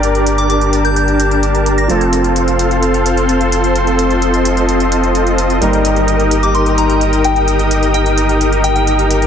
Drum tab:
HH |xxxxxxxxxxxxxxxx|xxxxxxxxxxxxxxxx|xxxxxxxxxxxxxxxx|xxxxxxxxxxxxxxxx|

HH |xxxxxxxxxxxxxxxx|